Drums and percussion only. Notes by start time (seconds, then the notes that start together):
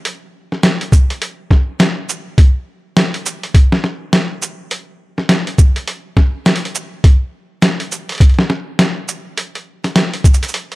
0.05 closed hi-hat
0.52 snare
0.63 snare, closed hi-hat
0.81 closed hi-hat
0.92 kick, shaker
1.10 closed hi-hat
1.22 closed hi-hat
1.51 kick, snare
1.80 snare, closed hi-hat
2.09 shaker
2.38 kick, closed hi-hat
2.97 snare, closed hi-hat
3.14 closed hi-hat
3.26 shaker
3.43 closed hi-hat
3.54 kick, closed hi-hat
3.72 snare
3.84 snare
4.13 snare, closed hi-hat
4.42 shaker
4.71 closed hi-hat
5.18 snare
5.29 snare, closed hi-hat
5.47 closed hi-hat
5.58 kick, shaker
5.76 closed hi-hat
5.88 closed hi-hat
6.17 kick, snare
6.46 snare, closed hi-hat
6.56 closed hi-hat
6.65 closed hi-hat
6.75 shaker
7.04 kick, closed hi-hat
7.62 snare, closed hi-hat
7.80 closed hi-hat
7.92 shaker
8.09 closed hi-hat
8.12 closed hi-hat
8.15 closed hi-hat
8.18 kick, closed hi-hat
8.21 closed hi-hat
8.29 closed hi-hat
8.34 closed hi-hat
8.39 snare
8.50 snare
8.79 snare, closed hi-hat
9.08 shaker
9.38 closed hi-hat
9.55 closed hi-hat
9.84 snare, closed hi-hat
9.96 snare, closed hi-hat
10.14 closed hi-hat
10.24 kick, shaker
10.34 shaker
10.43 closed hi-hat, shaker
10.48 shaker
10.54 closed hi-hat
10.72 closed hi-hat